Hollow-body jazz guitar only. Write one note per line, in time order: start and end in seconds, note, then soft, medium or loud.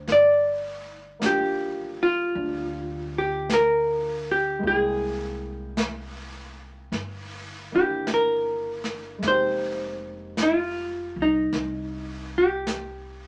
0.00 0.12 C5 medium
0.12 1.27 D5 medium
1.26 2.02 G4 medium
2.03 3.18 F4 medium
3.18 3.52 G4 medium
3.54 4.31 A#4 medium
4.31 4.66 G4 medium
4.67 7.75 G#4 medium
7.76 8.10 G4 medium
8.14 9.27 A#4 medium
9.28 10.36 C5 medium
10.43 11.21 F4 medium
11.22 12.37 D#4 medium
12.38 13.27 G4 medium